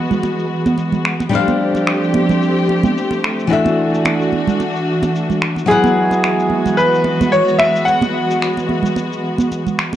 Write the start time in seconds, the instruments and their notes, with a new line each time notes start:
Already playing: string section E3 G#3 B3 F#4, nylon-string guitar F#3 E4 G#4 B4 F#5
0.11 low conga, shaker
0.23 muted conga, shaker
0.39 shaker
0.66 high conga, shaker
0.78 muted conga, shaker
0.92 low conga, shaker
1.05 finger snap
1.20 muted conga, shaker
1.29 string section F3 A3 C4 G4, nylon-string guitar G3 D4, shaker
1.33 nylon-string guitar C5 F5
1.48 high conga, shaker
1.75 muted conga, shaker
1.87 finger snap, shaker
2.03 shaker
2.14 muted conga, high conga
2.29 low conga, shaker
2.43 shaker
2.58 shaker
2.69 muted conga
2.83 high conga, low conga, shaker
2.98 shaker
3.11 muted conga, shaker
3.24 finger snap
3.40 shaker
3.47 nylon-string guitar E3 D4 F#4, string section E3 D4 F#4
3.51 nylon-string guitar A4 E5, shaker
3.65 muted conga, high conga, shaker
3.94 shaker
4.05 finger snap, muted conga, shaker
4.21 shaker
4.33 high conga
4.47 low conga, shaker
4.60 muted conga, shaker
4.76 shaker
5.02 muted conga, high conga, shaker
5.15 shaker
5.30 low conga, shaker
5.42 finger snap
5.56 muted conga, shaker
5.66 nylon-string guitar F#3 E4 G#4, string section G#3 B3 F#4, grand piano G#4, muted conga
5.70 nylon-string guitar B4 F#5, shaker
5.84 high conga, shaker
6.11 muted conga, shaker
6.24 finger snap, shaker
6.39 shaker
6.50 high conga
6.66 muted conga, low conga, shaker
6.77 grand piano B4, shaker
6.95 shaker
7.04 muted conga
7.21 high conga, low conga, shaker
7.32 grand piano C#5, shaker
7.48 shaker
7.59 grand piano E5, finger snap, muted conga
7.76 shaker
7.85 grand piano F#5, shaker
8.01 muted conga, high conga, shaker
8.31 shaker
8.42 finger snap, shaker
8.57 muted conga, shaker
8.69 high conga
8.83 low conga, shaker
8.96 muted conga, shaker
9.13 shaker
9.38 high conga, shaker
9.52 muted conga, shaker
9.67 low conga, shaker
9.79 finger snap
9.93 muted conga